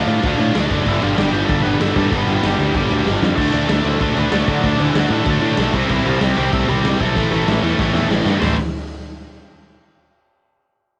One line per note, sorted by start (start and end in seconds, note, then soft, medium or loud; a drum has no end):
0.00 0.23 D3 loud
0.00 0.23 F3 medium
0.00 0.24 F3 medium
0.00 0.24 A3 loud
0.00 0.27 D4 loud
0.00 0.26 F4 loud
0.07 0.18 A2 loud
0.07 0.23 D3 loud
0.07 0.24 A3 medium
0.07 0.25 D4 loud
0.07 crash medium
0.23 0.34 D2 loud
0.23 0.40 D3 loud
0.23 0.86 F3 medium
0.23 0.54 F3 medium
0.23 0.39 A3 loud
0.23 0.40 D4 loud
0.23 0.55 F4 medium
0.23 kick loud
0.23 crash loud
0.39 0.50 A2 loud
0.39 0.54 D3 medium
0.39 0.54 A3 medium
0.39 0.55 D4 loud
0.39 crash medium
0.55 0.65 D2 medium
0.55 0.71 D3 loud
0.55 0.71 A3 loud
0.55 0.70 D4 loud
0.55 snare loud
0.55 crash medium
0.70 0.81 F#1 medium
0.70 0.85 D3 medium
0.70 0.86 A3 medium
0.70 3.38 D4 loud
0.70 kick medium
0.70 crash medium
0.86 0.96 G1 medium
0.86 1.02 G2 loud
0.86 1.01 D3 loud
0.86 1.02 E3 medium
0.86 1.02 G3 loud
0.86 1.50 B3 loud
0.86 1.52 D4 loud
0.86 1.03 E4 medium
0.86 kick loud
0.86 crash medium
1.02 1.13 G1 medium
1.02 1.16 G2 medium
1.02 1.16 D3 medium
1.02 1.18 F3 medium
1.02 1.17 G3 loud
1.02 1.18 F4 medium
1.02 crash medium
1.17 1.28 G1 medium
1.17 1.34 G2 loud
1.17 1.33 D3 loud
1.17 1.33 G3 loud
1.17 1.32 G3 medium
1.17 1.31 G4 loud
1.17 snare loud
1.17 crash medium
1.33 1.43 G1 loud
1.33 1.48 G2 medium
1.33 1.48 D3 medium
1.33 1.45 G3 medium
1.33 1.49 G3 loud
1.33 1.48 G4 medium
1.33 crash medium
1.46 1.60 G1 loud
1.46 1.64 G2 loud
1.46 1.64 D3 medium
1.46 1.63 A3 medium
1.46 1.63 A4 loud
1.46 kick loud
1.46 crash medium
1.50 1.64 G3 loud
1.50 2.12 B3 loud
1.50 2.15 D4 medium
1.63 1.75 G1 loud
1.63 1.78 G2 medium
1.63 1.79 D3 medium
1.63 1.79 G3 medium
1.63 1.79 B3 medium
1.63 1.82 B4 loud
1.63 crash medium
1.80 1.90 G1 medium
1.80 1.96 G2 loud
1.80 1.95 D3 loud
1.80 1.95 G3 loud
1.80 1.96 A3 medium
1.80 1.96 A4 loud
1.80 snare loud
1.80 crash loud
1.96 2.06 G2 loud
1.96 2.10 G2 medium
1.96 2.11 D3 medium
1.96 2.11 G3 loud
1.96 2.12 A3 medium
1.96 2.12 A4 loud
1.96 kick medium
1.96 crash medium
2.11 2.22 G1 medium
2.11 2.27 G2 loud
2.11 2.26 D3 loud
2.11 2.26 G3 loud
2.11 2.75 B3 loud
2.11 kick loud
2.11 crash medium
2.16 2.44 B3 medium
2.16 2.77 D4 loud
2.16 2.47 B4 loud
2.27 2.37 G1 loud
2.27 2.41 G2 medium
2.27 2.41 D3 medium
2.27 2.41 G3 loud
2.27 crash medium
2.42 2.54 G1 medium
2.42 2.57 G2 loud
2.42 2.57 D3 loud
2.42 2.56 G3 loud
2.42 snare loud
2.42 crash loud
2.46 2.74 G3 medium
2.46 2.74 G4 loud
2.58 2.69 D2 medium
2.58 2.73 G2 medium
2.58 2.73 D3 medium
2.58 2.74 G3 loud
2.58 crash medium
2.74 2.84 G1 loud
2.74 2.89 G2 loud
2.74 2.89 D3 loud
2.74 2.89 G3 loud
2.74 3.05 G3 medium
2.74 3.37 B3 loud
2.74 3.39 D4 medium
2.74 3.05 G4 medium
2.74 kick loud
2.74 crash loud
2.90 3.01 D2 loud
2.90 3.05 G2 medium
2.90 3.05 D3 medium
2.90 3.05 G3 medium
2.90 crash medium
3.05 3.16 G1 medium
3.05 3.21 G2 loud
3.05 3.21 D3 loud
3.05 3.20 G3 loud
3.05 snare medium
3.21 3.32 F2 loud
3.21 3.37 G2 medium
3.21 3.36 D3 medium
3.21 3.37 G3 medium
3.21 snare loud
3.37 3.48 D2 medium
3.37 3.52 D3 loud
3.37 4.00 F#3 loud
3.37 3.52 A3 loud
3.37 3.67 A3 medium
3.37 3.52 D4 loud
3.37 3.68 A4 loud
3.37 kick loud
3.37 crash loud
3.52 3.64 D2 medium
3.52 3.68 D3 medium
3.52 3.69 A3 medium
3.52 3.69 D4 loud
3.52 crash medium
3.69 3.80 D2 medium
3.69 3.84 D3 loud
3.69 3.84 A3 loud
3.69 3.99 A3 medium
3.69 3.84 D4 loud
3.69 4.02 A4 loud
3.69 snare loud
3.69 crash medium
3.85 3.95 D2 loud
3.85 4.00 D3 medium
3.85 4.00 A3 medium
3.85 4.00 D4 loud
3.85 crash medium
4.01 4.11 D2 medium
4.01 4.16 D3 loud
4.01 4.63 F#3 medium
4.01 4.15 A3 loud
4.01 4.17 A3 medium
4.01 4.15 D4 loud
4.01 4.18 A4 loud
4.01 kick loud
4.01 crash medium
4.16 4.27 D2 loud
4.16 4.30 D3 medium
4.16 4.31 A3 medium
4.16 4.31 D4 medium
4.16 4.32 B4 loud
4.16 crash medium
4.21 4.33 B3 medium
4.31 4.42 D2 medium
4.31 4.48 D3 medium
4.31 4.47 A3 loud
4.31 4.48 A3 medium
4.31 4.47 D4 loud
4.31 4.48 A4 loud
4.31 snare loud
4.31 crash medium
4.48 4.58 D3 loud
4.48 4.63 D3 medium
4.48 4.63 F#3 medium
4.48 4.63 A3 medium
4.48 4.64 D4 loud
4.48 4.64 F#4 loud
4.48 kick medium
4.48 crash medium
4.64 4.74 D2 medium
4.64 4.80 D3 loud
4.64 5.26 F#3 loud
4.64 4.80 A3 loud
4.64 4.79 D4 loud
4.64 4.81 D4 loud
4.64 4.79 D5 medium
4.64 kick loud
4.64 crash loud
4.79 4.89 D2 medium
4.79 4.94 D3 medium
4.79 4.96 E3 medium
4.79 4.95 A3 medium
4.79 4.95 D4 loud
4.79 crash medium
4.83 4.97 E4 medium
4.94 5.05 D2 medium
4.94 5.12 D3 loud
4.94 5.11 A3 loud
4.94 5.11 D4 loud
4.94 snare loud
4.94 crash loud
4.99 5.12 F#3 medium
4.99 5.12 F#4 loud
5.10 5.21 A2 loud
5.10 5.26 D3 medium
5.10 5.27 A3 medium
5.10 5.27 D4 loud
5.10 5.27 A4 loud
5.10 crash medium
5.26 5.37 D2 loud
5.26 5.42 D3 loud
5.26 5.74 F#3 medium
5.26 5.42 A3 loud
5.26 5.41 D4 loud
5.26 kick loud
5.26 crash medium
5.30 5.73 A3 medium
5.30 5.72 A4 loud
5.41 5.52 A2 loud
5.41 5.57 D3 medium
5.41 5.58 A3 medium
5.41 5.58 D4 medium
5.41 crash medium
5.57 5.68 B1 medium
5.57 5.73 D3 medium
5.57 5.74 A3 loud
5.57 5.74 D4 loud
5.57 snare loud
5.57 crash loud
5.73 5.84 C2 medium
5.73 5.89 C3 loud
5.73 5.88 G3 medium
5.73 5.89 C4 loud
5.73 6.36 E4 loud
5.73 kick medium
5.73 crash medium
5.89 6.00 C2 medium
5.89 6.04 C3 loud
5.89 6.05 E3 medium
5.89 6.04 G3 loud
5.89 6.05 C4 loud
5.89 6.08 E4 loud
5.89 kick loud
5.89 crash loud
6.05 6.15 C2 medium
6.05 6.21 C3 medium
6.05 6.21 F3 medium
6.05 6.20 G3 medium
6.05 6.20 C4 loud
6.05 6.22 F4 medium
6.05 crash medium
6.21 6.31 C2 loud
6.21 6.36 C3 medium
6.21 6.36 G3 loud
6.21 6.37 G3 medium
6.21 6.37 C4 loud
6.21 6.37 G4 loud
6.21 snare loud
6.21 crash loud
6.37 6.48 C2 loud
6.37 6.52 C3 medium
6.37 6.52 G3 medium
6.37 6.52 C4 loud
6.37 7.19 E4 medium
6.37 6.53 G4 medium
6.37 crash medium
6.52 6.63 C2 loud
6.52 6.67 C3 loud
6.52 6.68 G3 loud
6.52 6.67 A3 medium
6.52 6.69 C4 loud
6.52 6.68 A4 medium
6.52 kick loud
6.52 crash medium
6.68 6.79 C2 loud
6.68 6.85 C3 medium
6.68 6.98 G3 medium
6.68 6.85 G3 medium
6.68 6.85 C4 loud
6.68 7.01 G4 medium
6.68 crash medium
6.84 6.94 C2 medium
6.84 7.00 C3 medium
6.84 7.01 G3 loud
6.84 7.02 C4 loud
6.84 snare loud
6.84 crash medium
7.01 7.16 B1 medium
7.01 7.16 C3 medium
7.01 7.16 G3 loud
7.01 8.07 A3 medium
7.01 7.17 C4 medium
7.01 8.07 A4 medium
7.01 kick medium
7.01 crash medium
7.16 7.26 A1 medium
7.16 7.32 A2 loud
7.16 7.32 E3 loud
7.16 7.31 A3 loud
7.16 7.79 C4 loud
7.16 7.80 E4 medium
7.16 kick loud
7.16 crash medium
7.31 7.41 A1 medium
7.31 7.46 A2 medium
7.31 7.47 E3 medium
7.31 7.47 A3 medium
7.31 crash medium
7.47 7.57 A1 loud
7.47 7.62 A2 loud
7.47 7.62 E3 loud
7.47 7.61 A3 loud
7.47 snare loud
7.47 crash medium
7.62 7.73 E2 medium
7.62 7.77 A2 medium
7.62 7.78 E3 medium
7.62 7.79 A3 loud
7.62 crash medium
7.79 7.89 A1 loud
7.79 7.95 A2 loud
7.79 7.94 E3 loud
7.79 7.94 A3 loud
7.79 8.42 C4 medium
7.79 kick loud
7.79 snare medium
7.83 8.43 E4 medium
7.93 8.04 E2 loud
7.93 8.10 A2 medium
7.93 8.11 E3 medium
7.93 8.11 A3 loud
7.93 snare medium
8.09 8.20 A1 medium
8.09 8.26 A2 loud
8.09 8.25 E3 loud
8.09 8.25 A3 loud
8.09 snare loud
8.25 8.36 G2 medium
8.25 8.41 A2 medium
8.25 8.41 E3 medium
8.25 8.41 A3 loud
8.25 snare loud
8.40 8.56 A1 loud
8.40 8.55 A2 loud
8.40 8.55 E3 loud
8.40 8.56 A3 loud
8.40 8.56 C5 medium
8.40 snare loud
8.40 floor tom loud
8.40 open hi-hat medium
8.44 8.56 C4 loud
8.44 8.56 E4 loud